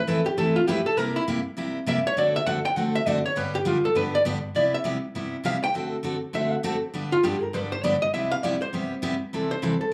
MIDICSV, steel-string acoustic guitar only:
0, 0, Header, 1, 2, 480
1, 0, Start_track
1, 0, Key_signature, 0, "major"
1, 0, Tempo, 298063
1, 1578, Time_signature, 4, 2, 24, 8
1, 15996, End_track
2, 0, Start_track
2, 0, Title_t, "Steel-string acoustic guitar"
2, 0, Program_c, 0, 25
2, 118, Note_on_c, 0, 52, 66
2, 122, Note_on_c, 0, 45, 71
2, 131, Note_on_c, 0, 57, 75
2, 133, Note_on_c, 0, 60, 73
2, 136, Note_on_c, 0, 64, 81
2, 139, Note_on_c, 0, 71, 79
2, 310, Note_off_c, 0, 52, 0
2, 312, Note_off_c, 0, 45, 0
2, 316, Note_off_c, 0, 57, 0
2, 317, Note_off_c, 0, 60, 0
2, 319, Note_off_c, 0, 64, 0
2, 320, Note_off_c, 0, 71, 0
2, 602, Note_on_c, 0, 45, 55
2, 606, Note_on_c, 0, 52, 65
2, 606, Note_on_c, 0, 57, 65
2, 615, Note_on_c, 0, 60, 62
2, 620, Note_on_c, 0, 64, 59
2, 628, Note_on_c, 0, 71, 70
2, 936, Note_off_c, 0, 45, 0
2, 939, Note_off_c, 0, 52, 0
2, 939, Note_off_c, 0, 57, 0
2, 943, Note_off_c, 0, 60, 0
2, 945, Note_off_c, 0, 64, 0
2, 950, Note_off_c, 0, 71, 0
2, 1091, Note_on_c, 0, 45, 85
2, 1094, Note_on_c, 0, 52, 77
2, 1100, Note_on_c, 0, 57, 84
2, 1107, Note_on_c, 0, 60, 81
2, 1108, Note_on_c, 0, 64, 97
2, 1115, Note_on_c, 0, 71, 92
2, 1277, Note_off_c, 0, 45, 0
2, 1278, Note_off_c, 0, 52, 0
2, 1281, Note_off_c, 0, 57, 0
2, 1285, Note_off_c, 0, 60, 0
2, 1285, Note_off_c, 0, 64, 0
2, 1288, Note_off_c, 0, 71, 0
2, 1558, Note_on_c, 0, 48, 57
2, 1569, Note_on_c, 0, 55, 60
2, 1574, Note_on_c, 0, 58, 68
2, 1580, Note_on_c, 0, 64, 59
2, 1585, Note_on_c, 0, 67, 68
2, 1895, Note_off_c, 0, 48, 0
2, 1900, Note_off_c, 0, 55, 0
2, 1903, Note_off_c, 0, 58, 0
2, 1906, Note_off_c, 0, 64, 0
2, 1908, Note_off_c, 0, 67, 0
2, 2053, Note_on_c, 0, 48, 72
2, 2057, Note_on_c, 0, 58, 77
2, 2059, Note_on_c, 0, 55, 75
2, 2068, Note_on_c, 0, 64, 87
2, 2073, Note_on_c, 0, 67, 83
2, 2238, Note_off_c, 0, 48, 0
2, 2240, Note_off_c, 0, 58, 0
2, 2241, Note_off_c, 0, 55, 0
2, 2246, Note_off_c, 0, 64, 0
2, 2248, Note_off_c, 0, 67, 0
2, 2523, Note_on_c, 0, 48, 64
2, 2531, Note_on_c, 0, 55, 59
2, 2538, Note_on_c, 0, 58, 66
2, 2539, Note_on_c, 0, 64, 70
2, 2547, Note_on_c, 0, 67, 71
2, 2858, Note_off_c, 0, 48, 0
2, 2862, Note_off_c, 0, 55, 0
2, 2865, Note_off_c, 0, 58, 0
2, 2866, Note_off_c, 0, 64, 0
2, 2870, Note_off_c, 0, 67, 0
2, 3003, Note_on_c, 0, 48, 80
2, 3016, Note_on_c, 0, 58, 89
2, 3018, Note_on_c, 0, 55, 88
2, 3025, Note_on_c, 0, 64, 86
2, 3026, Note_on_c, 0, 67, 95
2, 3193, Note_off_c, 0, 48, 0
2, 3200, Note_off_c, 0, 58, 0
2, 3201, Note_off_c, 0, 55, 0
2, 3204, Note_off_c, 0, 64, 0
2, 3205, Note_off_c, 0, 67, 0
2, 3489, Note_on_c, 0, 50, 60
2, 3495, Note_on_c, 0, 57, 62
2, 3496, Note_on_c, 0, 60, 61
2, 3499, Note_on_c, 0, 66, 73
2, 3512, Note_on_c, 0, 69, 64
2, 3821, Note_off_c, 0, 50, 0
2, 3824, Note_off_c, 0, 57, 0
2, 3825, Note_off_c, 0, 60, 0
2, 3826, Note_off_c, 0, 66, 0
2, 3833, Note_off_c, 0, 69, 0
2, 3965, Note_on_c, 0, 50, 79
2, 3972, Note_on_c, 0, 57, 78
2, 3980, Note_on_c, 0, 60, 69
2, 3983, Note_on_c, 0, 66, 78
2, 3987, Note_on_c, 0, 69, 74
2, 4155, Note_off_c, 0, 50, 0
2, 4158, Note_off_c, 0, 57, 0
2, 4162, Note_off_c, 0, 60, 0
2, 4163, Note_off_c, 0, 66, 0
2, 4165, Note_off_c, 0, 69, 0
2, 4447, Note_on_c, 0, 50, 61
2, 4462, Note_on_c, 0, 60, 58
2, 4463, Note_on_c, 0, 57, 62
2, 4471, Note_on_c, 0, 66, 66
2, 4474, Note_on_c, 0, 69, 64
2, 4780, Note_off_c, 0, 50, 0
2, 4788, Note_off_c, 0, 57, 0
2, 4788, Note_off_c, 0, 60, 0
2, 4792, Note_off_c, 0, 66, 0
2, 4794, Note_off_c, 0, 69, 0
2, 4933, Note_on_c, 0, 50, 81
2, 4935, Note_on_c, 0, 57, 79
2, 4943, Note_on_c, 0, 60, 91
2, 4951, Note_on_c, 0, 66, 99
2, 4954, Note_on_c, 0, 69, 92
2, 5119, Note_off_c, 0, 50, 0
2, 5120, Note_off_c, 0, 57, 0
2, 5124, Note_off_c, 0, 60, 0
2, 5128, Note_off_c, 0, 66, 0
2, 5129, Note_off_c, 0, 69, 0
2, 5404, Note_on_c, 0, 50, 59
2, 5410, Note_on_c, 0, 43, 58
2, 5414, Note_on_c, 0, 55, 61
2, 5419, Note_on_c, 0, 59, 62
2, 5423, Note_on_c, 0, 62, 58
2, 5427, Note_on_c, 0, 67, 66
2, 5739, Note_off_c, 0, 50, 0
2, 5742, Note_off_c, 0, 43, 0
2, 5744, Note_off_c, 0, 55, 0
2, 5747, Note_off_c, 0, 59, 0
2, 5748, Note_off_c, 0, 62, 0
2, 5750, Note_off_c, 0, 67, 0
2, 5876, Note_on_c, 0, 43, 77
2, 5877, Note_on_c, 0, 50, 75
2, 5882, Note_on_c, 0, 55, 76
2, 5889, Note_on_c, 0, 59, 81
2, 5889, Note_on_c, 0, 67, 81
2, 5891, Note_on_c, 0, 62, 90
2, 6070, Note_off_c, 0, 43, 0
2, 6071, Note_off_c, 0, 50, 0
2, 6073, Note_off_c, 0, 55, 0
2, 6077, Note_off_c, 0, 59, 0
2, 6077, Note_off_c, 0, 67, 0
2, 6078, Note_off_c, 0, 62, 0
2, 6361, Note_on_c, 0, 43, 56
2, 6366, Note_on_c, 0, 50, 62
2, 6367, Note_on_c, 0, 55, 64
2, 6371, Note_on_c, 0, 59, 68
2, 6381, Note_on_c, 0, 67, 69
2, 6382, Note_on_c, 0, 62, 66
2, 6697, Note_off_c, 0, 43, 0
2, 6700, Note_off_c, 0, 50, 0
2, 6700, Note_off_c, 0, 55, 0
2, 6703, Note_off_c, 0, 59, 0
2, 6707, Note_off_c, 0, 67, 0
2, 6708, Note_off_c, 0, 62, 0
2, 6844, Note_on_c, 0, 43, 78
2, 6845, Note_on_c, 0, 50, 80
2, 6854, Note_on_c, 0, 55, 83
2, 6854, Note_on_c, 0, 59, 87
2, 6858, Note_on_c, 0, 62, 89
2, 6868, Note_on_c, 0, 67, 101
2, 7035, Note_off_c, 0, 43, 0
2, 7035, Note_off_c, 0, 50, 0
2, 7039, Note_off_c, 0, 59, 0
2, 7040, Note_off_c, 0, 55, 0
2, 7041, Note_off_c, 0, 62, 0
2, 7046, Note_off_c, 0, 67, 0
2, 7322, Note_on_c, 0, 48, 53
2, 7333, Note_on_c, 0, 55, 62
2, 7344, Note_on_c, 0, 59, 62
2, 7350, Note_on_c, 0, 67, 58
2, 7351, Note_on_c, 0, 64, 65
2, 7658, Note_off_c, 0, 48, 0
2, 7663, Note_off_c, 0, 55, 0
2, 7669, Note_off_c, 0, 59, 0
2, 7672, Note_off_c, 0, 64, 0
2, 7672, Note_off_c, 0, 67, 0
2, 7794, Note_on_c, 0, 48, 74
2, 7804, Note_on_c, 0, 55, 78
2, 7809, Note_on_c, 0, 59, 67
2, 7811, Note_on_c, 0, 64, 80
2, 7818, Note_on_c, 0, 67, 79
2, 7989, Note_off_c, 0, 48, 0
2, 7994, Note_off_c, 0, 55, 0
2, 7997, Note_off_c, 0, 59, 0
2, 7998, Note_off_c, 0, 64, 0
2, 8002, Note_off_c, 0, 67, 0
2, 8293, Note_on_c, 0, 48, 56
2, 8295, Note_on_c, 0, 55, 64
2, 8307, Note_on_c, 0, 59, 62
2, 8307, Note_on_c, 0, 64, 69
2, 8310, Note_on_c, 0, 67, 67
2, 8623, Note_off_c, 0, 48, 0
2, 8624, Note_off_c, 0, 55, 0
2, 8630, Note_off_c, 0, 59, 0
2, 8630, Note_off_c, 0, 64, 0
2, 8632, Note_off_c, 0, 67, 0
2, 8753, Note_on_c, 0, 48, 73
2, 8772, Note_on_c, 0, 55, 77
2, 8773, Note_on_c, 0, 59, 91
2, 8778, Note_on_c, 0, 64, 80
2, 8781, Note_on_c, 0, 67, 94
2, 8949, Note_off_c, 0, 48, 0
2, 8958, Note_off_c, 0, 55, 0
2, 8959, Note_off_c, 0, 59, 0
2, 8961, Note_off_c, 0, 64, 0
2, 8962, Note_off_c, 0, 67, 0
2, 9245, Note_on_c, 0, 50, 50
2, 9255, Note_on_c, 0, 57, 67
2, 9259, Note_on_c, 0, 66, 67
2, 9260, Note_on_c, 0, 60, 64
2, 9269, Note_on_c, 0, 69, 65
2, 9579, Note_off_c, 0, 50, 0
2, 9584, Note_off_c, 0, 57, 0
2, 9586, Note_off_c, 0, 66, 0
2, 9587, Note_off_c, 0, 60, 0
2, 9591, Note_off_c, 0, 69, 0
2, 9708, Note_on_c, 0, 50, 69
2, 9719, Note_on_c, 0, 57, 73
2, 9730, Note_on_c, 0, 60, 69
2, 9731, Note_on_c, 0, 66, 74
2, 9731, Note_on_c, 0, 69, 82
2, 9906, Note_off_c, 0, 50, 0
2, 9911, Note_off_c, 0, 57, 0
2, 9917, Note_off_c, 0, 60, 0
2, 9917, Note_off_c, 0, 66, 0
2, 9917, Note_off_c, 0, 69, 0
2, 10197, Note_on_c, 0, 50, 69
2, 10203, Note_on_c, 0, 60, 60
2, 10204, Note_on_c, 0, 57, 60
2, 10214, Note_on_c, 0, 69, 64
2, 10219, Note_on_c, 0, 66, 68
2, 10534, Note_off_c, 0, 50, 0
2, 10538, Note_off_c, 0, 57, 0
2, 10538, Note_off_c, 0, 60, 0
2, 10543, Note_off_c, 0, 69, 0
2, 10546, Note_off_c, 0, 66, 0
2, 10680, Note_on_c, 0, 50, 80
2, 10688, Note_on_c, 0, 57, 88
2, 10695, Note_on_c, 0, 66, 84
2, 10696, Note_on_c, 0, 60, 97
2, 10701, Note_on_c, 0, 69, 94
2, 10872, Note_off_c, 0, 50, 0
2, 10875, Note_off_c, 0, 57, 0
2, 10879, Note_off_c, 0, 60, 0
2, 10879, Note_off_c, 0, 66, 0
2, 10882, Note_off_c, 0, 69, 0
2, 11169, Note_on_c, 0, 43, 65
2, 11169, Note_on_c, 0, 50, 61
2, 11178, Note_on_c, 0, 55, 56
2, 11184, Note_on_c, 0, 62, 65
2, 11187, Note_on_c, 0, 59, 69
2, 11193, Note_on_c, 0, 67, 61
2, 11500, Note_off_c, 0, 43, 0
2, 11500, Note_off_c, 0, 50, 0
2, 11505, Note_off_c, 0, 55, 0
2, 11508, Note_off_c, 0, 62, 0
2, 11510, Note_off_c, 0, 59, 0
2, 11512, Note_off_c, 0, 67, 0
2, 11648, Note_on_c, 0, 43, 84
2, 11657, Note_on_c, 0, 50, 84
2, 11664, Note_on_c, 0, 55, 85
2, 11664, Note_on_c, 0, 59, 80
2, 11667, Note_on_c, 0, 67, 88
2, 11671, Note_on_c, 0, 62, 78
2, 11835, Note_off_c, 0, 43, 0
2, 11840, Note_off_c, 0, 50, 0
2, 11843, Note_off_c, 0, 55, 0
2, 11843, Note_off_c, 0, 59, 0
2, 11845, Note_off_c, 0, 67, 0
2, 11847, Note_off_c, 0, 62, 0
2, 12130, Note_on_c, 0, 43, 66
2, 12140, Note_on_c, 0, 50, 62
2, 12142, Note_on_c, 0, 55, 68
2, 12153, Note_on_c, 0, 62, 64
2, 12154, Note_on_c, 0, 59, 62
2, 12158, Note_on_c, 0, 67, 69
2, 12460, Note_off_c, 0, 43, 0
2, 12466, Note_off_c, 0, 50, 0
2, 12467, Note_off_c, 0, 55, 0
2, 12472, Note_off_c, 0, 62, 0
2, 12473, Note_off_c, 0, 59, 0
2, 12475, Note_off_c, 0, 67, 0
2, 12617, Note_on_c, 0, 43, 90
2, 12617, Note_on_c, 0, 50, 77
2, 12625, Note_on_c, 0, 55, 83
2, 12628, Note_on_c, 0, 59, 90
2, 12633, Note_on_c, 0, 67, 105
2, 12634, Note_on_c, 0, 62, 93
2, 12799, Note_off_c, 0, 43, 0
2, 12799, Note_off_c, 0, 50, 0
2, 12803, Note_off_c, 0, 55, 0
2, 12805, Note_off_c, 0, 59, 0
2, 12808, Note_off_c, 0, 62, 0
2, 12808, Note_off_c, 0, 67, 0
2, 13102, Note_on_c, 0, 48, 59
2, 13108, Note_on_c, 0, 59, 62
2, 13111, Note_on_c, 0, 55, 65
2, 13116, Note_on_c, 0, 64, 69
2, 13119, Note_on_c, 0, 67, 60
2, 13427, Note_off_c, 0, 48, 0
2, 13430, Note_off_c, 0, 59, 0
2, 13431, Note_off_c, 0, 55, 0
2, 13434, Note_off_c, 0, 64, 0
2, 13435, Note_off_c, 0, 67, 0
2, 13580, Note_on_c, 0, 48, 72
2, 13592, Note_on_c, 0, 55, 77
2, 13594, Note_on_c, 0, 59, 76
2, 13599, Note_on_c, 0, 64, 85
2, 13601, Note_on_c, 0, 67, 87
2, 13761, Note_off_c, 0, 48, 0
2, 13767, Note_off_c, 0, 55, 0
2, 13768, Note_off_c, 0, 59, 0
2, 13770, Note_off_c, 0, 64, 0
2, 13772, Note_off_c, 0, 67, 0
2, 14055, Note_on_c, 0, 48, 65
2, 14065, Note_on_c, 0, 55, 58
2, 14071, Note_on_c, 0, 59, 65
2, 14073, Note_on_c, 0, 64, 65
2, 14083, Note_on_c, 0, 67, 64
2, 14383, Note_off_c, 0, 48, 0
2, 14388, Note_off_c, 0, 55, 0
2, 14391, Note_off_c, 0, 59, 0
2, 14392, Note_off_c, 0, 64, 0
2, 14397, Note_off_c, 0, 67, 0
2, 14526, Note_on_c, 0, 48, 84
2, 14536, Note_on_c, 0, 55, 86
2, 14538, Note_on_c, 0, 59, 87
2, 14538, Note_on_c, 0, 64, 97
2, 14542, Note_on_c, 0, 67, 88
2, 14714, Note_off_c, 0, 48, 0
2, 14719, Note_off_c, 0, 55, 0
2, 14720, Note_off_c, 0, 59, 0
2, 14720, Note_off_c, 0, 64, 0
2, 14722, Note_off_c, 0, 67, 0
2, 15025, Note_on_c, 0, 52, 58
2, 15026, Note_on_c, 0, 48, 54
2, 15034, Note_on_c, 0, 55, 55
2, 15037, Note_on_c, 0, 60, 63
2, 15044, Note_on_c, 0, 64, 53
2, 15046, Note_on_c, 0, 69, 67
2, 15349, Note_off_c, 0, 48, 0
2, 15349, Note_off_c, 0, 52, 0
2, 15353, Note_off_c, 0, 55, 0
2, 15355, Note_off_c, 0, 60, 0
2, 15358, Note_off_c, 0, 64, 0
2, 15359, Note_off_c, 0, 69, 0
2, 15494, Note_on_c, 0, 48, 79
2, 15501, Note_on_c, 0, 52, 82
2, 15507, Note_on_c, 0, 55, 78
2, 15512, Note_on_c, 0, 60, 68
2, 15512, Note_on_c, 0, 64, 73
2, 15517, Note_on_c, 0, 69, 76
2, 15679, Note_off_c, 0, 48, 0
2, 15682, Note_off_c, 0, 52, 0
2, 15685, Note_off_c, 0, 55, 0
2, 15687, Note_off_c, 0, 64, 0
2, 15688, Note_off_c, 0, 60, 0
2, 15690, Note_off_c, 0, 69, 0
2, 15996, End_track
0, 0, End_of_file